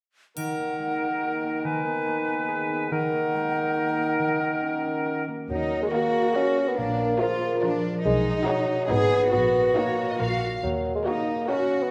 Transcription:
0.36 2.87 D#3 soft
0.36 1.63 D#3 soft
0.36 2.87 D#4 soft
0.36 1.60 A#4 soft
0.36 1.60 F#5 soft
0.36 triangle soft
0.58 1.00 A#3 soft
0.79 1.16 G#3 soft
1.01 1.42 A#3 soft
1.22 1.66 F#4 soft
1.43 1.66 A#3 soft
1.64 2.90 D#3 soft
1.64 2.89 B4 soft
1.64 2.88 G#5 soft
1.85 2.26 B3 soft
2.06 2.42 A#3 soft
2.27 2.68 B3 soft
2.48 2.92 G#4 soft
2.69 2.92 B3 soft
2.91 4.18 D#3 soft
2.91 5.24 D#3 soft
2.91 5.24 D#4 soft
2.91 5.24 A#4 soft
2.91 5.24 F#5 soft
3.12 3.54 A#3 soft
3.34 3.70 G#3 soft
3.55 3.96 A#3 soft
3.76 5.04 F#4 soft
3.98 4.82 A#3 soft
4.19 5.49 D#3 soft
4.40 6.79 D#4 soft
4.61 4.99 C#4 soft
4.84 5.27 A#3 soft
5.06 6.79 F#4 soft
5.28 6.34 A#3 soft
5.50 5.84 D#2 soft
5.50 6.79 D#3 soft
5.50 5.80 F#3 soft
5.50 5.90 D#4 soft
5.71 6.13 A#4 soft
5.82 5.87 G#3 soft
5.93 6.35 A#3 medium
5.93 6.76 F#4 soft
5.93 6.25 F#4 soft
5.93 6.29 G#4 soft
5.93 6.25 A#4 soft
5.93 6.25 D#5 soft
6.14 6.55 A#4 soft
6.35 8.06 A#3 soft
6.35 6.69 C#4 medium
6.35 6.67 F#4 soft
6.35 6.67 A#4 soft
6.35 6.67 D#5 soft
6.57 6.98 A#4 soft
6.67 6.79 B3 soft
6.77 7.11 A#1 soft
6.77 8.06 A#2 soft
6.77 7.22 A#3 medium
6.77 7.19 D4 soft
6.99 7.40 A#4 soft
7.20 7.83 F3 soft
7.20 7.52 F4 soft
7.20 7.62 F4 soft
7.20 7.56 G#4 soft
7.20 7.52 A#4 soft
7.20 7.51 D5 soft
7.41 7.82 A#4 soft
7.62 8.06 F3 soft
7.62 8.04 D4 soft
7.62 7.94 F4 soft
7.62 7.94 A#4 soft
7.62 7.93 D5 soft
7.83 8.06 A#4 soft
8.04 8.38 B1 medium
8.04 8.91 B2 soft
8.04 8.48 G#3 medium
8.04 8.88 D#4 medium
8.26 8.67 D#5 soft
8.46 8.89 F#3 medium
8.46 8.78 D#4 medium
8.46 8.79 F#4 medium
8.46 8.83 C#5 soft
8.46 8.78 D#5 soft
8.68 9.10 D#5 soft
8.89 9.23 G#1 medium
8.89 9.34 G#2 soft
8.89 9.32 B3 medium
8.89 9.22 D#4 soft
8.89 9.21 G#4 soft
8.89 9.32 G#4 medium
8.89 9.22 D#5 soft
9.11 10.21 D#4 soft
9.11 9.54 D#5 soft
9.32 9.67 A#1 soft
9.32 10.18 A#2 soft
9.32 9.77 B3 medium
9.32 10.39 F#4 soft
9.55 9.97 D#5 soft
9.76 10.41 A#3 soft
9.76 10.08 D#4 soft
9.76 10.09 F#4 soft
9.76 10.06 C#5 soft
9.76 10.13 C#5 soft
9.98 10.21 D#5 soft
10.09 10.20 D#5 soft
10.19 10.54 A#1 soft
10.19 10.65 A#2 soft
10.19 10.52 F4 soft
10.19 10.52 A#4 soft
10.19 10.62 F5 soft
10.42 10.65 F4 soft
10.42 10.65 D5 soft
10.63 10.97 D#2 soft
10.63 11.91 D#3 soft
10.63 10.93 F#3 soft
10.85 11.27 D#5 soft
10.95 11.07 G#3 soft
11.05 11.48 A#3 medium
11.05 11.46 D#4 soft
11.05 11.39 F#4 soft
11.05 11.38 A#4 soft
11.05 11.43 C#5 soft
11.05 11.38 D#5 soft
11.28 11.70 D#5 soft
11.49 11.84 C#4 medium
11.49 11.91 D#4 soft
11.49 11.91 F#4 soft
11.49 11.81 F#4 soft
11.49 11.81 A#4 soft
11.49 11.81 D#5 soft
11.71 11.91 D#5 soft
11.82 11.91 B3 soft

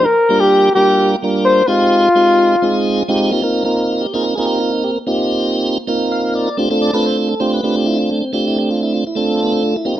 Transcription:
0.05 0.42 A#4 medium
0.29 0.69 G3 medium
0.29 0.69 A#3 medium
0.29 0.70 D4 medium
0.29 0.70 F4 medium
0.29 0.70 G4 medium
0.40 0.74 G4 medium
0.75 1.16 G3 medium
0.75 1.16 A#3 medium
0.75 1.16 D4 medium
0.75 1.16 F4 medium
0.75 1.15 G4 medium
0.75 1.16 A#4 medium
1.23 1.63 G3 medium
1.23 1.63 A#3 medium
1.23 1.63 D4 medium
1.23 1.63 F4 medium
1.23 1.64 A#4 medium
1.45 1.70 C5 medium
1.68 2.09 G#3 medium
1.68 2.08 C4 medium
1.68 2.09 D#4 medium
1.68 3.09 F4 loud
1.68 2.09 F4 medium
1.68 2.09 G4 medium
2.15 2.56 G#3 medium
2.15 2.56 C4 medium
2.15 2.56 D#4 medium
2.15 2.57 F4 medium
2.15 2.56 G4 medium
2.62 3.03 G#3 medium
2.62 3.03 C4 medium
2.62 3.03 D#4 medium
2.62 3.03 F4 medium
2.62 3.03 G#4 medium
3.08 3.32 G#3 medium
3.08 3.30 C4 medium
3.08 3.31 D#4 medium
3.08 3.31 F4 medium
3.08 3.31 G4 medium
3.31 3.41 A#3 medium
3.31 3.41 C4 medium
3.31 3.41 D#4 medium
3.31 3.42 F4 medium
3.31 3.43 G4 medium
3.42 3.63 A#3 medium
3.42 3.63 C4 medium
3.42 3.63 D#4 medium
3.42 3.64 F4 medium
3.42 3.64 A#4 medium
3.64 4.06 A#3 medium
3.64 4.06 C4 medium
3.64 4.07 D#4 medium
3.64 3.91 F4 medium
3.64 4.07 A#4 medium
3.92 4.03 F4 medium
4.01 4.13 G4 medium
4.14 4.34 A#3 medium
4.14 4.34 C4 medium
4.14 4.34 D#4 medium
4.14 4.34 F4 medium
4.14 4.25 G#4 medium
4.14 4.23 A#4 medium
4.24 4.36 A#4 medium
4.35 4.98 A#3 medium
4.35 4.98 C4 medium
4.35 4.71 D#4 medium
4.35 4.59 F4 medium
4.35 4.48 G#4 medium
4.35 4.99 A#4 medium
4.45 4.59 G4 medium
4.60 4.72 F4 medium
4.72 4.84 D#4 medium
4.84 4.91 G4 medium
5.07 5.78 A#3 medium
5.07 5.78 C4 medium
5.07 5.78 D#4 medium
5.07 5.78 F4 medium
5.07 5.78 G4 medium
5.87 6.49 A#3 medium
5.87 6.49 C4 medium
5.87 6.49 D#4 medium
5.87 6.49 F4 medium
5.87 6.49 A#4 medium
6.12 6.34 F5 medium
6.35 6.57 D5 medium
6.57 6.68 A3 medium
6.57 6.69 C4 medium
6.57 6.69 D4 medium
6.57 6.69 F4 medium
6.57 6.69 G4 loud
6.70 6.91 A3 medium
6.70 6.91 C4 medium
6.70 6.91 D4 medium
6.70 6.91 F4 medium
6.70 6.91 A4 medium
6.82 6.94 D5 medium
6.93 7.34 A3 medium
6.93 7.35 C4 medium
6.93 7.34 D4 medium
6.93 7.16 F4 medium
6.93 7.28 A4 medium
6.93 7.05 B4 loud
7.06 7.17 C5 medium
7.18 7.29 F4 medium
7.29 7.40 A4 medium
7.40 7.61 A3 medium
7.40 7.61 C4 medium
7.40 7.61 D4 medium
7.40 7.61 F4 medium
7.40 7.61 G4 medium
7.40 7.52 C5 loud
7.54 7.76 B4 medium
7.63 8.10 A3 medium
7.63 8.19 C4 medium
7.63 8.24 D4 medium
7.63 7.97 F4 medium
7.63 7.75 G4 medium
7.76 7.87 G4 medium
7.86 7.98 E4 medium
7.98 8.10 F4 medium
8.11 8.22 A3 soft
8.20 8.32 C4 medium
8.33 9.04 A3 medium
8.33 9.04 C4 medium
8.33 9.04 D4 medium
8.33 8.45 F4 medium
8.33 8.57 G4 medium
8.48 8.58 E4 medium
8.59 8.69 G4 loud
8.71 8.81 F4 medium
8.83 8.93 E4 medium
8.94 9.05 F4 medium
9.07 9.17 E4 medium
9.15 9.76 A3 medium
9.15 9.29 C4 medium
9.15 9.62 D4 medium
9.15 9.77 F4 medium
9.15 9.77 A4 medium
9.30 9.40 C4 medium
9.43 9.53 B3 medium
9.52 9.63 C4 medium
9.63 9.74 D4 medium
9.76 9.87 E4 medium
9.85 9.95 A#3 medium
9.85 9.96 C4 medium
9.85 9.96 D#4 medium
9.85 9.96 F4 medium
9.85 9.96 G4 medium
9.97 10.00 A#3 medium
9.97 10.00 C4 medium

